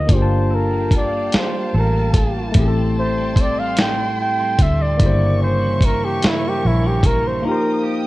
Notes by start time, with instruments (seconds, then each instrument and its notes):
Already playing: clean electric guitar A#3 D#4 G4, tine electric piano C5, flugelhorn D#5
0.07 fingered electric bass G1, clean electric guitar G3, tine electric piano A#3 D4, string section F5 G5 A5, kick, closed hi-hat
0.12 tine electric piano F4 G4 G#4, flugelhorn C5
0.22 tine electric piano A5
0.29 clean electric guitar F4
0.51 clean electric guitar A4, flugelhorn A#4
0.71 clean electric guitar A#3
0.91 clean electric guitar F4, kick, closed hi-hat
0.96 flugelhorn D5
1.12 clean electric guitar A#3
1.32 clean electric guitar G3, muted fingered electric bass stroke, snare, closed hi-hat
1.37 flugelhorn C5
1.55 clean electric guitar F4
1.74 fingered electric bass A1, clean electric guitar A4, flugelhorn A#4
1.96 clean electric guitar A#3
2.13 clean electric guitar F4, kick, closed hi-hat
2.36 clean electric guitar A#3
2.52 fingered electric bass A1, clean electric guitar A2, tine electric piano A3 C4, string section G5 C6, kick, closed hi-hat
2.56 tine electric piano E4 G4
2.61 tine electric piano G#4
2.68 tine electric piano A4
2.76 clean electric guitar C4
2.98 clean electric guitar E4, flugelhorn C5
3.18 clean electric guitar G3
3.36 clean electric guitar C4, kick, closed hi-hat
3.41 flugelhorn D5
3.58 clean electric guitar G3, flugelhorn F5
3.77 clean electric guitar A2, flugelhorn G5, snare, closed hi-hat
4.01 clean electric guitar C4
4.21 clean electric guitar E4, flugelhorn G5
4.40 clean electric guitar G3
4.58 fingered electric bass D2, clean electric guitar C4, flugelhorn E5, kick, closed hi-hat
4.80 clean electric guitar G3, flugelhorn D5
4.97 fingered electric bass G1, clean electric guitar G2, tine electric piano C#3 A#3, string section A#4 E5 C#6, kick, closed hi-hat
5.02 tine electric piano E4 G4
5.06 tine electric piano C5
5.20 clean electric guitar A#3
5.41 clean electric guitar C#4, flugelhorn C5
5.61 clean electric guitar E3
5.81 clean electric guitar A#3, kick, closed hi-hat
5.86 flugelhorn A#4
6.01 clean electric guitar E3, flugelhorn G4
6.22 clean electric guitar G2, muted fingered electric bass stroke, snare, closed hi-hat
6.28 flugelhorn E4
6.42 clean electric guitar A#3
6.49 flugelhorn G4
6.62 fingered electric bass A#1, clean electric guitar C#4
6.67 flugelhorn E4
6.84 clean electric guitar E3, flugelhorn G4
7.03 clean electric guitar A#3, flugelhorn A#4, kick, closed hi-hat
7.23 clean electric guitar E3
7.28 flugelhorn C5
7.42 clean electric guitar F3, tine electric piano A#3 D#4, string section G5 D#6
7.47 tine electric piano F4 G4, flugelhorn A#4
7.52 tine electric piano C5
7.64 clean electric guitar D#4
7.83 clean electric guitar G4
8.03 clean electric guitar A#3